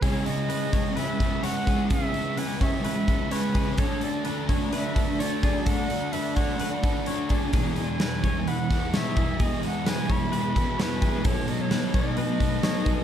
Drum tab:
HH |oooooooo|oooooooo|oooooooo|oooooooo|
SD |--------|--------|--------|--------|
BD |o--o-o-o|o--o-o-o|o--o-o-o|o--o-o-o|

HH |oooooooo|oooooooo|oooooooo|
SD |--o--oo-|--o---o-|--o---o-|
BD |o--o-o-o|o--o-o-o|o--o-o-o|